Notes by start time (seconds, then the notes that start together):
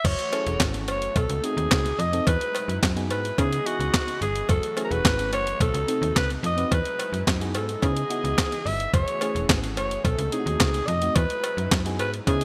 0.04 F#1 E3 F#3 A3 F#4 C#5, kick, closed hi-hat, crash, cowbell
0.19 closed hi-hat
0.32 C#4 E4 G#4 A4, closed hi-hat, cowbell
0.47 E1, closed hi-hat
0.60 G#1, kick, snare, clap, closed hi-hat, cowbell
0.74 closed hi-hat
0.88 F#1 C#5, closed hi-hat, cowbell
1.02 closed hi-hat
1.16 B1 B2 C3 D#4 A4, kick, closed hi-hat, cowbell
1.29 C#2, closed hi-hat
1.43 A3 C4 D#4 F#4 G#4, closed hi-hat
1.57 D#2, closed hi-hat
1.71 C#2, kick, snare, clap, closed hi-hat, cowbell
1.86 closed hi-hat
1.99 F2 D#5, closed hi-hat
2.13 C4 D#4 F#4 A4, closed hi-hat
2.27 E2 F#3 G#3 D#4 E4 B4, kick, closed hi-hat, cowbell
2.41 closed hi-hat
2.55 closed hi-hat, cowbell
2.68 F#2, closed hi-hat
2.83 F#2, kick, snare, clap, closed hi-hat, cowbell
2.96 B3 D#4 F#4 G#4, closed hi-hat
3.10 G#2 B4, closed hi-hat, cowbell
3.25 closed hi-hat
3.38 C#3 E3 B3 D#4 E4 G#4 D#5, kick, closed hi-hat, cowbell
3.53 closed hi-hat
3.66 B3 D#4 E4 F#4 G#4, closed hi-hat
3.80 C#2, closed hi-hat
3.94 kick, snare, clap, closed hi-hat, cowbell
4.08 closed hi-hat
4.21 G1 G#4, closed hi-hat
4.36 closed hi-hat
4.49 F#1 F#3 A3 F#4 A4, kick, closed hi-hat, cowbell
4.63 closed hi-hat
4.76 A3 C#4 E4 G#4, closed hi-hat, cowbell
4.85 A#4
4.91 E1 B4, closed hi-hat
5.05 G#1, kick, snare, clap, closed hi-hat, cowbell
5.19 closed hi-hat
5.32 F#1 C#5, closed hi-hat, cowbell
5.47 closed hi-hat
5.60 B1 B2 C3 D#4 A4, kick, closed hi-hat, cowbell
5.74 C#2, closed hi-hat
5.88 C4 D#4 F#4 A4, closed hi-hat
6.02 D#2, closed hi-hat
6.16 C#2 B4, kick, snare, clap, closed hi-hat, cowbell
6.30 closed hi-hat
6.43 F2 D#5, closed hi-hat
6.57 C4 D#4 F#4 B4, closed hi-hat
6.71 E2 F#3 G#3 D#4 E4 B4, kick, closed hi-hat, cowbell
6.85 closed hi-hat
6.99 closed hi-hat, cowbell
7.13 F#2, closed hi-hat
7.27 F#2, kick, snare, clap, closed hi-hat, cowbell
7.40 B3 D#4 F#4 G#4, closed hi-hat
7.55 G#2 A4, closed hi-hat, cowbell
7.69 closed hi-hat
7.82 C#3 E3 B3 D#4 E4 G#4 D#5, kick, closed hi-hat, cowbell
7.97 closed hi-hat
8.10 B3 D#4 E4 F#4, closed hi-hat
8.24 C#2, closed hi-hat
8.38 kick, snare, clap, closed hi-hat, cowbell
8.52 closed hi-hat
8.66 G1 E5, open hi-hat
8.80 closed hi-hat
8.93 F#1 E3 A3 F#4 G#4 C#5, kick, closed hi-hat, cowbell
9.08 closed hi-hat
9.21 A3 C#4 E4 G#4, closed hi-hat, cowbell
9.35 E1, closed hi-hat
9.49 G#1, kick, snare, clap, closed hi-hat, cowbell
9.64 closed hi-hat
9.77 F#1 C#5, closed hi-hat, cowbell
9.91 closed hi-hat
10.05 B1 B2 C3 D#4 A4, kick, closed hi-hat, cowbell
10.18 C#2, closed hi-hat
10.32 A3 C4 D#4 E4 G#4, closed hi-hat
10.39 F#4
10.46 D#2, closed hi-hat
10.60 C#2, kick, snare, clap, closed hi-hat, cowbell
10.74 closed hi-hat
10.87 F2 D#5, closed hi-hat
11.02 A3 C4 D#4 F#4, closed hi-hat
11.16 E2 F#3 G#3 D#4 E4 B4, kick, closed hi-hat, cowbell
11.30 closed hi-hat
11.44 closed hi-hat, cowbell
11.57 F#2, closed hi-hat
11.71 F#2, kick, snare, clap, closed hi-hat, cowbell
11.86 B3 D#4 F#4 G#4, closed hi-hat
11.99 G#2 B4, closed hi-hat, cowbell
12.14 closed hi-hat
12.27 C#3 E3 B3 D#4 E4 G#4 D#5, kick, closed hi-hat, cowbell
12.41 closed hi-hat